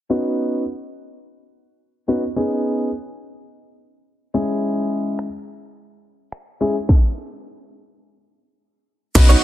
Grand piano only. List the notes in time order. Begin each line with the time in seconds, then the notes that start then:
0.10 B3 C#4 D#4 F#4
2.08 B3 C#4 D#4 F#4
2.36 B3 C#4 D#4 G#4
4.34 G#3 C#4 E4 G#4
6.61 G#3 C#4 E4 G#4
9.15 B3 C#4 D#4 F#4 B4